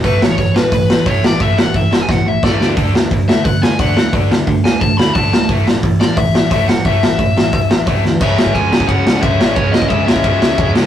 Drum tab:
CC |----------------|----------------|----------------|----------------|
RD |----------------|----------------|----------------|----------------|
HH |o---o---o---o---|o---o-----------|o---o---o---o---|o---o---o---o---|
SD |--o---o---o---o-|--o---o-o---o-o-|--o---o---o---o-|--o---o---o---o-|
BD |o---o---o---o---|o---o---o---o---|o---o---o---o---|o---o---o---o---|

CC |----------------|----------------|x---------------|----------------|
RD |----------------|----------------|----x---x---x---|x---x---x---x---|
HH |o---o---o---o---|o---o---o---o---|----------------|----------------|
SD |--o---o---o---o-|--o---o---o---o-|--o---o---o---o-|--o---o---o---o-|
BD |o---o---o---o---|o---o---o---o---|o--oo--oo---o---|o--oo--oo---o---|